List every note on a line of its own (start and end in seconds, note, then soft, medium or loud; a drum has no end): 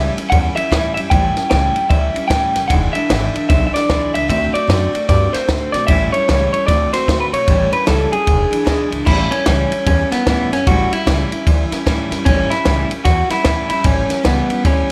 0.00 0.17 A2 medium
0.00 0.17 E3 medium
0.00 0.18 G3 medium
0.00 0.17 C#4 medium
0.00 0.16 E4 medium
0.00 0.13 E5 loud
0.17 0.31 G3 medium
0.17 0.32 C#4 medium
0.17 0.32 E4 medium
0.17 muted upright bass stroke medium
0.17 ride medium
0.30 0.50 E2 loud
0.30 0.57 E3 medium
0.30 0.57 G3 medium
0.30 0.56 C#4 medium
0.30 0.37 F#5 loud
0.30 kick loud
0.30 ride medium
0.34 0.54 E4 medium
0.55 0.70 G3 soft
0.55 0.71 C#4 medium
0.55 0.71 E4 medium
0.55 0.93 E5 loud
0.55 muted upright bass stroke medium
0.55 ride medium
0.70 0.90 E2 medium
0.70 0.96 A2 medium
0.70 0.97 E3 medium
0.70 0.97 G3 medium
0.70 0.97 C#4 medium
0.70 0.95 E4 medium
0.70 kick medium
0.70 snare loud
0.70 ride medium
0.94 1.07 F#2 medium
0.94 1.12 C#4 soft
0.94 1.11 E4 medium
0.94 0.99 E5 loud
0.94 ride medium
0.99 1.10 G3 soft
1.10 1.29 A1 medium
1.10 1.36 A2 medium
1.10 1.37 E3 medium
1.10 1.37 G3 medium
1.10 1.37 C#4 medium
1.10 1.35 E4 medium
1.10 1.49 G5 loud
1.10 kick loud
1.10 ride medium
1.36 1.50 G3 soft
1.36 1.51 C#4 medium
1.36 1.51 E4 medium
1.36 muted upright bass stroke medium
1.36 snare soft
1.36 ride medium
1.50 1.69 C#2 medium
1.50 1.76 A2 medium
1.50 1.76 E3 medium
1.50 1.76 G3 medium
1.50 1.75 C#4 loud
1.50 1.73 E4 loud
1.50 1.89 G5 loud
1.50 snare loud
1.50 ride medium
1.75 1.90 G3 soft
1.75 1.90 C#4 medium
1.75 1.90 E4 medium
1.75 muted upright bass stroke medium
1.75 ride medium
1.89 2.08 D2 loud
1.89 2.15 E3 medium
1.89 2.16 G3 medium
1.89 2.15 C#4 medium
1.89 2.27 E5 loud
1.89 kick loud
1.89 ride medium
1.93 2.13 E4 medium
2.14 2.28 G3 soft
2.14 2.29 C#4 medium
2.14 2.30 E4 medium
2.14 muted upright bass stroke medium
2.14 ride medium
2.28 2.48 E2 medium
2.28 2.55 A2 medium
2.28 2.55 E3 medium
2.28 2.55 G3 medium
2.28 2.54 C#4 medium
2.28 2.52 E4 medium
2.28 2.59 G5 loud
2.28 kick medium
2.28 snare loud
2.28 ride medium
2.53 2.66 F#1 medium
2.53 2.70 G3 soft
2.53 2.70 C#4 soft
2.53 2.69 E4 medium
2.53 snare soft
2.53 ride medium
2.68 2.88 E1 medium
2.68 2.95 E2 medium
2.68 2.95 B2 medium
2.68 2.95 E3 loud
2.68 2.96 G#3 loud
2.68 2.94 D4 medium
2.68 2.93 E4 medium
2.68 2.75 F#5 loud
2.68 kick loud
2.68 ride medium
2.93 3.09 G#3 medium
2.93 3.10 D4 medium
2.93 3.09 E4 medium
2.93 3.48 E5 loud
2.93 muted upright bass stroke medium
2.93 ride medium
2.98 3.09 E3 soft
3.09 3.28 G#1 loud
3.09 3.35 E2 medium
3.09 3.35 B2 medium
3.09 3.35 E3 medium
3.09 3.35 G#3 medium
3.09 3.34 D4 loud
3.09 3.33 E4 loud
3.09 snare loud
3.09 ride loud
3.34 3.47 E3 soft
3.34 3.49 G#3 soft
3.34 3.49 D4 medium
3.34 3.49 E4 medium
3.34 muted upright bass stroke medium
3.34 ride medium
3.48 3.68 B1 loud
3.48 3.74 E3 medium
3.48 3.75 G#3 medium
3.48 3.74 D4 medium
3.48 3.72 E4 medium
3.48 3.66 E5 loud
3.48 kick loud
3.48 snare soft
3.48 ride medium
3.67 3.74 E5 medium
3.74 3.88 E3 medium
3.74 3.89 G#3 medium
3.74 3.89 D4 medium
3.74 3.89 E4 medium
3.74 4.11 D5 medium
3.74 muted upright bass stroke medium
3.74 snare soft
3.74 ride medium
3.88 4.07 B1 loud
3.88 4.14 E2 medium
3.88 4.15 B2 medium
3.88 4.15 E3 medium
3.88 4.14 G#3 medium
3.88 4.13 D4 medium
3.88 4.12 E4 loud
3.88 kick medium
3.88 snare loud
3.88 ride medium
4.13 4.25 C#2 medium
4.13 4.28 E3 soft
4.13 4.28 G#3 medium
4.13 4.29 D4 soft
4.13 4.29 E4 medium
4.13 4.28 E5 loud
4.13 ride medium
4.28 4.48 D2 medium
4.28 4.54 D3 medium
4.28 4.54 A3 medium
4.28 4.54 C4 medium
4.28 4.53 F#4 medium
4.28 4.53 E5 medium
4.28 kick loud
4.28 ride medium
4.53 4.68 A3 soft
4.53 4.68 C4 soft
4.53 4.69 F#4 medium
4.53 5.08 D5 loud
4.53 muted upright bass stroke medium
4.53 ride medium
4.67 4.87 F#2 medium
4.67 4.93 D3 medium
4.67 4.94 A3 medium
4.67 4.94 C4 loud
4.67 4.92 F#4 loud
4.67 snare loud
4.67 ride medium
4.93 5.08 A3 soft
4.93 5.09 C4 medium
4.93 5.08 F#4 medium
4.93 muted upright bass stroke medium
4.93 ride medium
5.08 5.27 G2 loud
5.08 5.34 D3 medium
5.08 5.34 A3 medium
5.08 5.34 C4 medium
5.08 5.33 F#4 medium
5.08 5.35 D5 loud
5.08 kick loud
5.08 snare soft
5.08 ride medium
5.33 5.47 A3 soft
5.33 5.49 C4 medium
5.33 5.49 F#4 medium
5.33 5.75 C5 loud
5.33 muted upright bass stroke medium
5.33 snare soft
5.33 ride medium
5.48 5.67 A2 loud
5.48 5.73 D3 medium
5.48 5.74 A3 medium
5.48 5.74 C4 medium
5.48 5.72 F#4 medium
5.48 kick medium
5.48 snare loud
5.48 ride medium
5.72 5.84 B2 medium
5.72 5.89 C4 medium
5.72 5.88 F#4 medium
5.72 5.86 D5 loud
5.72 snare soft
5.72 ride medium
5.76 5.89 A3 soft
5.87 6.07 A1 loud
5.87 6.13 A2 medium
5.87 6.14 E3 medium
5.87 6.14 G3 loud
5.87 6.14 C#4 medium
5.87 6.12 E4 loud
5.87 6.11 E5 loud
5.87 kick loud
5.87 ride medium
6.12 6.28 G3 soft
6.12 6.29 C#4 medium
6.12 6.28 E4 medium
6.12 6.52 C#5 loud
6.12 muted upright bass stroke medium
6.12 ride medium
6.28 6.47 C#2 loud
6.28 6.53 A2 medium
6.28 6.54 E3 medium
6.28 6.54 G3 loud
6.28 6.54 C#4 medium
6.28 6.52 E4 loud
6.28 snare loud
6.28 ride loud
6.53 6.69 G3 soft
6.53 6.69 C#4 medium
6.53 6.68 E4 medium
6.53 6.66 C#5 medium
6.53 ride medium
6.67 6.86 D2 loud
6.67 6.93 D3 medium
6.67 6.94 A3 medium
6.67 6.94 C4 medium
6.67 6.93 D5 loud
6.67 kick loud
6.67 snare soft
6.67 ride medium
6.71 6.92 F#4 medium
6.93 7.08 A3 medium
6.93 7.09 C4 medium
6.93 7.08 F#4 medium
6.93 7.20 C5 loud
6.93 muted upright bass stroke medium
6.93 snare soft
6.93 ride medium
7.08 7.26 A2 loud
7.08 7.33 D3 medium
7.08 7.34 A3 medium
7.08 7.33 C4 medium
7.08 7.31 F#4 loud
7.08 kick medium
7.08 snare loud
7.08 ride medium
7.20 7.25 B4 medium
7.32 7.43 B2 medium
7.32 7.49 A3 soft
7.32 7.48 C4 medium
7.32 7.47 F#4 medium
7.32 7.73 C#5 loud
7.32 ride medium
7.47 7.66 A1 loud
7.47 7.73 A2 medium
7.47 7.74 E3 medium
7.47 7.74 G3 medium
7.47 7.72 C#4 medium
7.47 7.71 E4 medium
7.47 kick loud
7.47 ride medium
7.72 7.86 G3 soft
7.72 7.87 C#4 medium
7.72 7.87 E4 medium
7.72 7.87 B4 medium
7.72 muted upright bass stroke medium
7.72 ride medium
7.86 8.06 C#2 medium
7.86 8.12 A2 medium
7.86 8.13 E3 medium
7.86 8.13 G3 medium
7.86 8.12 C#4 medium
7.86 8.10 E4 medium
7.86 8.12 A4 medium
7.86 snare loud
7.86 ride loud
8.11 8.26 G3 soft
8.11 8.27 C#4 medium
8.11 8.27 E4 medium
8.11 8.88 G#4 medium
8.11 muted upright bass stroke medium
8.11 ride medium
8.25 8.45 E1 medium
8.25 8.52 E3 medium
8.25 8.52 G#3 medium
8.25 8.51 D4 medium
8.25 8.49 E4 medium
8.25 kick loud
8.25 ride medium
8.51 8.65 E3 soft
8.51 8.65 G#3 soft
8.51 8.66 D4 medium
8.51 8.66 E4 medium
8.51 muted upright bass stroke medium
8.51 ride medium
8.65 8.85 B1 loud
8.65 8.91 E2 medium
8.65 8.92 B2 medium
8.65 8.92 E3 medium
8.65 8.92 G#3 medium
8.65 8.91 D4 loud
8.65 8.89 E4 loud
8.65 kick medium
8.65 snare loud
8.65 ride medium
8.90 9.02 C#2 medium
8.90 9.05 E3 medium
8.90 9.06 G#3 medium
8.90 9.07 D4 medium
8.90 9.06 E4 medium
8.90 ride medium
9.05 9.25 A1 loud
9.05 9.31 A2 medium
9.05 9.32 E3 medium
9.05 9.32 G3 medium
9.05 9.31 C#4 medium
9.05 9.33 E4 medium
9.05 9.30 E4 loud
9.05 kick loud
9.05 crash loud
9.31 9.45 G3 medium
9.31 9.86 C#4 loud
9.31 9.46 C#4 medium
9.31 9.46 E4 medium
9.31 muted upright bass stroke medium
9.31 ride medium
9.45 9.65 C#2 medium
9.45 9.71 A2 medium
9.45 9.72 E3 loud
9.45 9.72 G3 medium
9.45 9.72 C#4 loud
9.45 9.70 E4 medium
9.45 snare loud
9.45 ride medium
9.71 9.86 G3 soft
9.71 9.87 C#4 medium
9.71 9.86 E4 medium
9.71 ride medium
9.86 10.05 E2 loud
9.86 10.12 E3 medium
9.86 10.12 G3 medium
9.86 10.11 C#4 medium
9.86 10.12 C#4 medium
9.86 10.10 E4 medium
9.86 kick loud
9.86 ride medium
10.11 10.26 G3 medium
10.11 10.49 B3 medium
10.11 10.27 C#4 medium
10.11 10.26 E4 medium
10.11 muted upright bass stroke medium
10.11 snare soft
10.11 ride medium
10.26 10.45 E2 medium
10.26 10.52 A2 medium
10.26 10.52 E3 medium
10.26 10.52 G3 medium
10.26 10.53 C#4 loud
10.26 10.51 E4 medium
10.26 kick medium
10.26 snare loud
10.26 ride medium
10.52 10.62 F#2 medium
10.52 10.67 G3 soft
10.52 10.67 C#4 medium
10.52 10.68 C#4 medium
10.52 10.67 E4 medium
10.52 snare soft
10.52 ride medium
10.67 10.85 A1 medium
10.67 10.92 A2 medium
10.67 10.92 E3 medium
10.67 10.93 G3 medium
10.67 10.92 C#4 loud
10.67 10.90 E4 medium
10.67 10.93 F#4 loud
10.67 kick loud
10.67 ride medium
10.91 11.06 G3 soft
10.91 11.06 C#4 soft
10.91 11.06 E4 medium
10.91 12.08 E4 loud
10.91 muted upright bass stroke medium
10.91 ride medium
11.06 11.24 C#2 medium
11.06 11.31 A2 medium
11.06 11.32 E3 medium
11.06 11.32 G3 medium
11.06 11.32 C#4 medium
11.06 11.31 E4 loud
11.06 snare loud
11.06 ride medium
11.32 11.47 G3 soft
11.32 11.47 C#4 medium
11.32 11.46 E4 medium
11.32 muted upright bass stroke medium
11.32 ride medium
11.47 11.65 D2 medium
11.47 11.72 E3 medium
11.47 11.72 G3 medium
11.47 11.72 C#4 medium
11.47 11.70 E4 medium
11.47 kick loud
11.47 ride medium
11.71 11.86 G3 medium
11.71 11.87 C#4 medium
11.71 11.86 E4 medium
11.71 muted upright bass stroke medium
11.71 snare soft
11.71 ride medium
11.86 12.04 E2 loud
11.86 12.11 A2 medium
11.86 12.12 E3 medium
11.86 12.12 G3 loud
11.86 12.11 C#4 medium
11.86 12.10 E4 loud
11.86 kick medium
11.86 snare loud
11.86 ride medium
12.11 12.22 F#2 loud
12.11 12.26 G3 soft
12.11 12.26 C#4 medium
12.11 12.26 E4 medium
12.11 snare soft
12.11 ride medium
12.25 12.44 A1 loud
12.25 12.51 A2 medium
12.25 12.51 E3 medium
12.25 12.52 G3 medium
12.25 12.49 C#4 medium
12.25 12.50 C#4 medium
12.25 12.48 E4 medium
12.25 kick loud
12.25 ride medium
12.50 12.65 G3 soft
12.50 12.66 C#4 medium
12.50 12.65 E4 medium
12.50 12.88 E4 loud
12.50 muted upright bass stroke medium
12.50 snare soft
12.50 ride medium
12.65 12.84 C#2 loud
12.65 12.90 A2 loud
12.65 12.90 E3 loud
12.65 12.91 G3 medium
12.65 12.90 C#4 loud
12.65 12.88 E4 medium
12.65 snare loud
12.65 ride medium
12.90 13.04 G3 soft
12.90 13.05 C#4 medium
12.90 13.05 E4 medium
12.90 ride medium
13.04 13.23 E2 loud
13.04 13.30 E3 medium
13.04 13.30 G3 medium
13.04 13.30 C#4 medium
13.04 13.28 E4 medium
13.04 13.31 F#4 loud
13.04 kick loud
13.04 snare soft
13.04 ride medium
13.29 13.45 G3 soft
13.29 13.45 C#4 medium
13.29 13.45 E4 medium
13.29 13.69 E4 loud
13.29 muted upright bass stroke medium
13.29 snare soft
13.29 ride medium
13.44 13.63 E2 loud
13.44 13.70 A2 medium
13.44 13.70 E3 medium
13.44 13.71 G3 medium
13.44 13.71 C#4 medium
13.44 13.68 E4 medium
13.44 kick medium
13.44 snare loud
13.44 ride loud
13.69 13.81 F#2 medium
13.69 13.84 G3 soft
13.69 13.85 C#4 medium
13.69 13.84 E4 medium
13.69 13.85 E4 loud
13.69 ride medium
13.84 14.03 A1 medium
13.84 14.10 A2 medium
13.84 14.10 E3 medium
13.84 14.10 G3 medium
13.84 14.25 C#4 loud
13.84 14.10 C#4 loud
13.84 14.08 E4 medium
13.84 kick loud
13.84 ride medium
14.10 14.24 G3 soft
14.10 14.24 C#4 medium
14.10 14.25 E4 medium
14.10 muted upright bass stroke medium
14.10 snare soft
14.10 ride medium
14.23 14.43 C#2 medium
14.23 14.49 A2 medium
14.23 14.50 E3 medium
14.23 14.50 G3 medium
14.23 14.62 B3 medium
14.23 14.50 C#4 loud
14.23 14.48 E4 loud
14.23 snare loud
14.23 ride medium
14.49 14.64 G3 medium
14.49 14.65 C#4 medium
14.49 14.64 E4 medium
14.49 muted upright bass stroke medium
14.49 ride medium
14.63 14.83 D2 loud
14.63 14.89 E3 medium
14.63 14.90 G3 medium
14.63 14.90 C#4 medium
14.63 14.92 C#4 medium
14.63 14.88 E4 medium
14.63 kick loud
14.63 ride medium